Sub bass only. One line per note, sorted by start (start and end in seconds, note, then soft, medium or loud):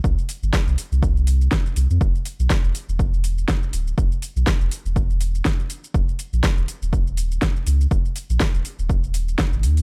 0.04 0.15 C2 loud
0.43 0.51 G1 medium
0.67 0.76 C2 medium
0.92 1.48 C2 medium
1.76 1.87 C2 medium
1.90 1.99 F2 medium
2.01 2.12 E1 loud
2.39 2.48 B1 medium
2.64 2.73 E1 medium
2.89 3.45 E1 medium
3.73 3.93 D1 medium
3.98 4.09 E1 loud
4.36 4.45 B1 medium
4.61 4.69 E1 medium
4.85 5.42 E1 medium
5.94 6.05 D#1 loud
6.33 6.41 A#1 medium
6.58 6.66 D#1 medium
6.82 7.38 D#1 medium
7.67 7.87 C#2 medium
7.91 8.02 D#1 loud
8.30 8.38 A#1 medium
8.54 8.63 D#1 medium
8.79 9.35 D#1 medium
9.53 9.65 G#1 medium
9.63 9.82 D#2 medium